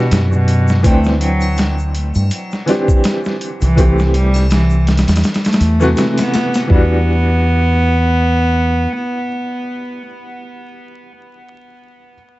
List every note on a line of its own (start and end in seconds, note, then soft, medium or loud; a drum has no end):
0.00 0.24 B2 loud
0.00 0.80 E3 medium
0.00 0.81 D4 medium
0.00 0.82 F#4 medium
0.00 0.80 G4 medium
0.11 0.85 F#2 medium
0.11 snare loud
0.11 closed hi-hat medium
0.11 shaker medium
0.32 0.80 B2 medium
0.32 shaker soft
0.48 closed hi-hat medium
0.68 snare medium
0.68 shaker medium
0.83 2.11 D2 medium
0.83 2.63 E3 medium
0.83 1.18 A3 loud
0.83 2.63 C4 medium
0.83 2.64 D4 medium
0.83 kick loud
0.83 closed hi-hat medium
0.83 shaker medium
0.87 2.65 G5 medium
1.04 snare medium
1.04 shaker soft
1.21 1.72 F#3 loud
1.21 closed hi-hat medium
1.41 triangle medium
1.41 shaker medium
1.57 snare loud
1.57 closed hi-hat medium
1.57 shaker medium
1.78 shaker soft
1.95 closed hi-hat medium
2.15 2.29 G2 medium
2.15 triangle medium
2.15 shaker medium
2.30 closed hi-hat medium
2.30 shaker medium
2.52 snare soft
2.52 shaker soft
2.66 3.73 E3 medium
2.66 3.73 C4 medium
2.66 3.74 D4 medium
2.66 snare medium
2.66 closed hi-hat medium
2.70 3.75 G4 medium
2.88 kick medium
2.88 shaker medium
3.04 snare loud
3.04 closed hi-hat medium
3.04 shaker medium
3.25 snare medium
3.25 shaker soft
3.41 closed hi-hat medium
3.61 5.04 C2 medium
3.61 4.09 E3 loud
3.61 closed hi-hat soft
3.61 shaker medium
3.76 5.56 E3 medium
3.76 5.56 A3 medium
3.76 5.57 C4 medium
3.76 kick loud
3.76 closed hi-hat medium
3.76 shaker medium
3.80 5.58 G4 medium
3.99 snare medium
3.99 shaker soft
4.14 4.47 G3 loud
4.14 closed hi-hat medium
4.34 snare soft
4.34 triangle medium
4.34 shaker medium
4.50 4.84 E3 medium
4.50 snare loud
4.50 closed hi-hat medium
4.50 shaker medium
4.70 shaker soft
4.87 snare medium
4.87 closed hi-hat medium
4.97 snare medium
4.97 closed hi-hat medium
5.08 5.22 E2 medium
5.08 snare medium
5.08 closed hi-hat medium
5.08 triangle medium
5.08 shaker medium
5.16 snare medium
5.16 closed hi-hat medium
5.24 snare medium
5.24 closed hi-hat medium
5.24 shaker medium
5.34 snare medium
5.34 closed hi-hat medium
5.44 6.09 A3 loud
5.44 snare medium
5.44 closed hi-hat medium
5.44 shaker soft
5.53 snare medium
5.53 closed hi-hat medium
5.61 5.93 E2 medium
5.61 closed hi-hat medium
5.79 6.67 C3 medium
5.79 6.65 E3 medium
5.79 6.66 A3 medium
5.79 6.67 F#4 loud
5.79 snare soft
5.79 shaker medium
5.97 snare loud
5.97 closed hi-hat medium
5.97 shaker medium
6.18 6.66 B3 medium
6.18 snare loud
6.18 closed hi-hat medium
6.18 shaker soft
6.34 snare loud
6.34 closed hi-hat medium
6.54 snare loud
6.54 closed hi-hat medium
6.54 shaker medium
6.68 8.86 E2 medium
6.68 11.08 E3 medium
6.68 11.09 G3 medium
6.68 10.39 B3 loud
6.68 kick loud
6.72 11.10 D4 medium
6.72 11.10 F#4 medium